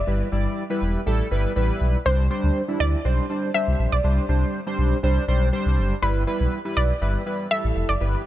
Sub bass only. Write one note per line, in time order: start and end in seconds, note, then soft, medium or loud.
0.07 0.23 G1 loud
0.32 0.47 G1 loud
0.82 0.97 E1 loud
1.07 1.22 A1 loud
1.31 1.46 G1 loud
1.56 1.71 A1 medium
1.81 1.96 B1 medium
2.06 2.29 C2 loud
2.44 2.51 D2 loud
2.80 2.95 D2 loud
3.05 3.20 B1 loud
3.68 3.75 C2 medium
3.79 3.87 A#1 medium
3.92 4.00 B1 medium
4.04 4.19 C2 loud
4.29 4.44 C2 loud
4.78 4.94 B1 medium
5.03 5.18 C2 medium
5.28 5.51 B1 medium
5.66 5.79 C2 medium
5.78 5.93 F#1 medium
6.02 6.26 G1 loud
6.40 6.47 B1 medium
6.77 6.92 B1 medium
7.02 7.17 G1 medium
7.64 7.71 A1 medium
7.76 7.84 F1 medium
7.89 7.96 F#1 medium
8.01 8.16 G1 loud